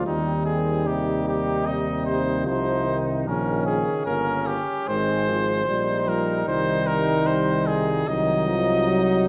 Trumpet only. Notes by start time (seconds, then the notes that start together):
0.06 D#4
0.46 G#4
0.87 G4
1.29 G4
1.67 D#5
2.06 C5
2.47 C5
3.27 A#4
3.66 G#4
4.06 A#4
4.47 G4
4.88 C5
6.08 A#4
6.48 C5
6.87 A#4
7.27 C5
7.67 G#4
8.08 D#5